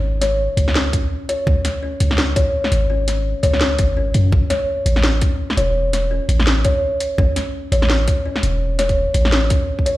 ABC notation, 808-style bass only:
X:1
M:4/4
L:1/16
Q:"Swing 16ths" 1/4=168
K:Alyd
V:1 name="808-style bass" clef=bass
G,,,4 z2 C,,4 z6 | C,, z4 z C,,4 z4 G,,,2- | G,,,4 z2 C,,4 G,,,4 F,,2 | A,,,2 z4 A,,,4 z4 E,,,2- |
E,,,4 z2 A,,,4 z6 | A,,,2 z4 A,,,4 z4 E,,,2- | E,,,4 z2 A,,,4 z6 |]